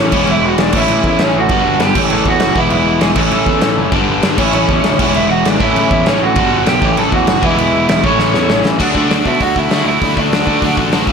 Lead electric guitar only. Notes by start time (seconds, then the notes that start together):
Already playing: C#4 C#5
0.30 E4 E5
0.45 F#4 F#5
0.60 D4 D5
0.76 E4 E5
1.07 E4 E5
1.21 C#4 C#5
1.36 F#4 F#5
1.81 G4 G5
2.10 A4 A5
2.26 F#4 F#5
2.58 E4 E5
2.71 E4 E5
3.00 G#4 G#5
3.17 A4 A5
4.38 C#4 C#5
4.54 C#4 C#5
5.15 E4 E5
5.29 F#4 F#5
5.45 D4 D5
5.61 E4 E5
5.91 E4 E5
6.07 C#4 C#5
6.22 F#4 F#5
6.68 G4 G5
6.97 A4 A5
7.13 F#4 F#5
7.44 E4 E5
7.57 E4 E5
7.90 E4 E5
8.04 C#5 C#6
8.81 D4 D5
9.26 E4 E5
9.42 F#4 F#5
9.57 E4 E5
9.86 E4 E5
10.19 D4 D5